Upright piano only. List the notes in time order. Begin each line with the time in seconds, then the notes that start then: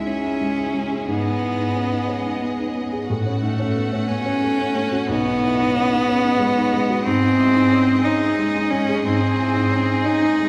Already playing: C#2 D#4 E4 F#4
0.06 D#4
0.24 E4
0.41 G#3
0.59 E4
0.74 G#3
0.91 G#4
1.08 G#2
1.26 D#4
1.42 E4
1.59 D#4
1.76 C#4
1.92 D#4
2.08 C#4
2.26 D#4
2.42 B3
2.59 D#4
2.75 B3
2.93 G#4
3.10 A2
3.26 C#4
3.42 D#4
3.60 C#4
3.76 B3
3.93 C#4
4.09 B3
4.26 C#4
4.44 A3
4.59 C#4
4.75 A3
4.92 F#4
5.09 B1
5.26 D#4
5.44 E4
5.59 D#4
5.75 C#4
5.91 D#4
6.09 C#4
6.24 D#4
6.40 G#3
6.58 D#4
6.73 G#3
6.90 F#4
7.06 G#2
7.22 D#4
7.37 E4
7.55 D#4
7.72 C#4
7.90 D#4
8.05 C#4
8.22 D#4
8.39 G#3
8.57 D#4
8.73 G#3
8.89 G#4
9.05 G#2
9.21 D#4
9.39 E4
9.56 D#4
9.71 C#4
9.88 D#4
10.04 C#4
10.22 D#4
10.40 G#3